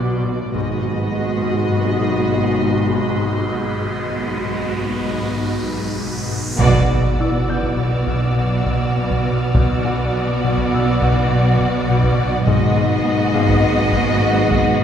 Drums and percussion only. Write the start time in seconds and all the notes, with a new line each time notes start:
0.55 taiko
6.58 taiko
7.63 taiko
8.07 taiko
8.66 taiko
9.11 taiko
9.54 taiko
10.58 taiko
11.02 taiko
11.60 taiko
12.04 taiko
12.47 taiko
13.49 taiko
13.93 taiko
14.51 taiko